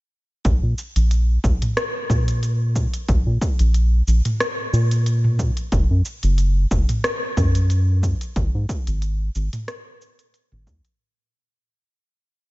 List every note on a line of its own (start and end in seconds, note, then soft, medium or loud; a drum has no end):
0.45 0.59 A#1 medium
0.45 kick loud
0.45 closed hi-hat soft
0.45 cabasa soft
0.63 0.74 A#2 medium
0.78 cabasa medium
0.96 1.38 A#1 medium
0.96 closed hi-hat medium
0.96 cabasa soft
1.11 closed hi-hat soft
1.11 cabasa soft
1.44 1.58 A#1 medium
1.44 kick loud
1.44 cabasa medium
1.62 closed hi-hat medium
1.62 mid tom medium
1.62 cabasa soft
1.77 cross-stick medium
1.77 closed hi-hat soft
1.77 cabasa soft
2.10 2.87 A#2 medium
2.10 kick medium
2.10 cabasa medium
2.28 closed hi-hat medium
2.28 cabasa soft
2.43 closed hi-hat soft
2.43 cabasa soft
2.76 kick medium
2.76 cabasa medium
2.94 closed hi-hat medium
2.94 cabasa soft
3.08 3.22 A#1 loud
3.08 kick loud
3.08 closed hi-hat soft
3.08 cabasa soft
3.26 3.38 A#2 medium
3.41 kick loud
3.41 cabasa medium
3.59 4.02 A#1 loud
3.59 closed hi-hat medium
3.59 cabasa soft
3.74 closed hi-hat soft
3.74 cabasa soft
4.07 4.21 A#1 medium
4.07 cabasa medium
4.25 closed hi-hat medium
4.25 mid tom medium
4.25 cabasa soft
4.40 cross-stick medium
4.40 closed hi-hat soft
4.40 cabasa soft
4.73 5.51 A#2 loud
4.73 cabasa medium
4.91 closed hi-hat medium
4.91 cabasa soft
5.06 closed hi-hat soft
5.06 cabasa soft
5.24 mid tom medium
5.39 kick medium
5.39 cabasa medium
5.57 closed hi-hat soft
5.57 cabasa soft
5.72 5.86 F#1 loud
5.72 kick loud
5.72 closed hi-hat soft
5.72 cabasa soft
5.90 6.02 F#2 medium
6.05 cabasa medium
6.23 6.66 F#1 loud
6.23 closed hi-hat soft
6.23 cabasa soft
6.38 closed hi-hat soft
6.38 cabasa soft
6.71 6.85 F#1 medium
6.71 kick loud
6.71 cabasa medium
6.89 closed hi-hat medium
6.89 mid tom medium
6.89 cabasa soft
7.04 cross-stick medium
7.04 closed hi-hat soft
7.04 cabasa soft
7.37 8.14 F#2 loud
7.37 kick loud
7.37 cabasa medium
7.55 closed hi-hat medium
7.55 cabasa soft
7.70 closed hi-hat soft
7.70 cabasa soft
8.03 kick medium
8.03 cabasa medium
8.21 closed hi-hat soft
8.21 cabasa soft
8.36 8.50 G#1 loud
8.36 kick loud
8.36 closed hi-hat soft
8.36 cabasa soft
8.55 8.66 G#2 medium
8.69 kick medium
8.69 cabasa medium
8.87 9.30 G#1 loud
8.87 closed hi-hat medium
8.87 cabasa soft
9.02 closed hi-hat soft
9.02 cabasa soft
9.35 9.49 G#1 medium
9.35 cabasa medium
9.53 closed hi-hat medium
9.53 mid tom medium
9.53 cabasa soft
9.68 cross-stick medium
9.68 closed hi-hat soft
9.68 cabasa soft
10.01 cabasa medium
10.19 closed hi-hat medium
10.19 cabasa soft
10.34 closed hi-hat soft
10.34 cabasa soft
10.52 10.69 G#1 loud
10.52 mid tom medium
10.67 10.81 D#2 loud
10.67 kick medium
10.67 cabasa medium
10.85 closed hi-hat soft
10.85 cabasa soft